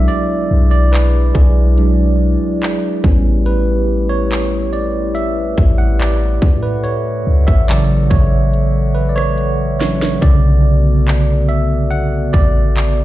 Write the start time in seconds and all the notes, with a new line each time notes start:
Already playing: F#3 G#3 D4 E4 G#4 D5 E5
0.08 D5, closed hi-hat
0.51 B1
0.71 D5
0.92 B4, clap, closed hi-hat
1.34 B1 G#4, kick, closed hi-hat
1.77 F#3 G#3 D4, closed hi-hat
2.62 clap, closed hi-hat
3.04 A1 G3 A3 B3 C#4 E4 G4 B4, kick, closed hi-hat
3.46 B4, closed hi-hat
4.09 C#5
4.31 clap, closed hi-hat
4.73 D5, closed hi-hat
5.15 E5, closed hi-hat
5.58 A1, kick
5.78 F#5
5.99 D5, clap, closed hi-hat
6.42 A2 A4 E5 F#5, kick, closed hi-hat
6.63 B4
6.84 C#5, closed hi-hat
7.27 C#2
7.47 A1 E5, kick
7.68 C#3 E3 F#3 D5, clap, closed hi-hat
8.10 A1 C#5, kick, closed hi-hat
8.53 closed hi-hat
8.95 B4
9.09 D5
9.16 C#5, cross-stick
9.38 closed hi-hat
9.79 E3 F#3 C#4 C#5, snare, closed hi-hat
10.02 snare
10.22 B1 C#3 D3 A3 B3 F#4 D5, kick, closed hi-hat
11.07 clap, closed hi-hat
11.49 E5, closed hi-hat
11.91 F#5, closed hi-hat
12.33 A1 D5, kick
12.76 clap, closed hi-hat